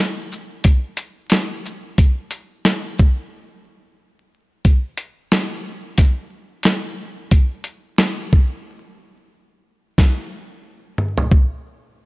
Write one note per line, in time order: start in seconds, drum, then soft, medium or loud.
0.32 shaker medium
0.64 kick loud
0.64 closed hi-hat loud
0.97 closed hi-hat medium
0.97 shaker medium
1.30 snare loud
1.30 closed hi-hat medium
1.66 shaker medium
1.98 kick loud
1.98 closed hi-hat medium
2.31 closed hi-hat medium
2.31 shaker medium
2.65 snare loud
2.65 closed hi-hat medium
2.99 kick medium
2.99 shaker medium
4.65 kick loud
4.65 closed hi-hat medium
4.97 closed hi-hat medium
5.32 snare loud
5.32 closed hi-hat medium
5.98 kick medium
5.98 snare soft
5.98 closed hi-hat loud
6.63 snare loud
6.63 closed hi-hat medium
7.31 kick loud
7.31 closed hi-hat medium
7.64 closed hi-hat medium
7.98 snare loud
7.98 closed hi-hat medium
8.33 kick medium
9.98 kick loud
9.98 snare medium
10.98 mid tom medium
11.18 floor tom medium
11.32 kick medium